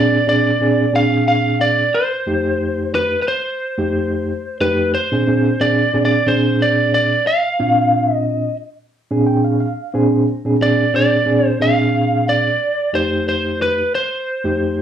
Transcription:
Already playing: A#2 C4 D4 G#4 D5
0.27 A#2 C4 D4 G#4 D5
0.61 A#2 C4 D4 G#4
0.93 A#2 C4 D4 G#4 F5
1.28 F5
1.61 D5
1.94 C5
2.26 F2 A3 D#4 G4
2.95 B4
3.22 B4
3.28 C5
3.78 F2 A3 D#4 G4
4.60 F2 A3 D#4 G4 B4
4.95 C5
5.12 A#2 C4 D4 G#4
5.27 A#2 C4 D4 G#4
5.60 A#2 C4 D4 G#4 D5
5.94 A#2 C4 D4 G#4
6.05 D5
6.26 A#2 C4 D4 G#4 C5
6.62 D5
6.94 D5
7.27 F5
7.59 A#2 C4 D4 F4
8.14 D#5
9.11 A#2 C4 D4 G#4
9.27 G5
9.45 F5
9.60 F5
9.94 A#2 C4 D4 G#4 C5
10.45 A#2 C4 D4 G#4
10.61 A#2 C4 D4 G#4 D5
10.93 A#2 C4 D4 G#4 D5
11.26 A#2 C4 D4 G#4
11.47 C5
11.60 A#2 C4 D4 G#4 F5
12.29 D5
12.93 F2 A3 D#4 G4 C5
13.29 C5
13.62 B4
13.95 C5
14.44 F2 A3 D#4 G4

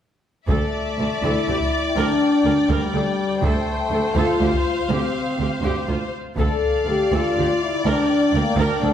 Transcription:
0.47 D2 A3 A4 D5 E5, taiko
0.99 D2 A4
1.22 D2 E4 A4
1.48 D2 G4
1.60 taiko
1.96 D2 D4 A#4 G5
2.45 D2 A#4
2.69 D2 G3 A#4
2.93 D2 A4
3.41 D2 A3 A4 C5, taiko
3.90 D2 A4
4.15 D2 F4 A4 F5
4.39 D2 G4
4.54 taiko
4.89 D2 C4 G4
5.38 D2 G4
5.62 D2 G4
5.87 D2 F4
6.37 D2 A4 D5 F5, taiko
6.87 D2 G4 A4
7.11 D2 F4 A4
7.36 D2 G4
7.62 E4
7.84 D2 D4 A#4 G5
8.33 D2 A#3 A#4
8.57 D2 D4 A#4
8.82 D2 A4

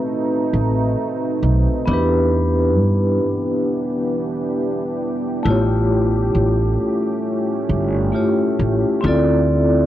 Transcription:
Already playing: A3 C4 D#4 F#4 B4
0.08 C4
0.53 A1
1.43 B1
1.86 E2 E3 B3 D4 E4 G4
1.91 G4 B4
2.77 G2
5.43 A1 A3 C#4 E4 F4
5.48 G4 C#5
6.35 A1
7.69 G1
8.12 A3 E4 F4 G4 C#5
8.59 A1
9.01 D2 D3 C4 E4 F4 A4 E5
9.06 A4 D5

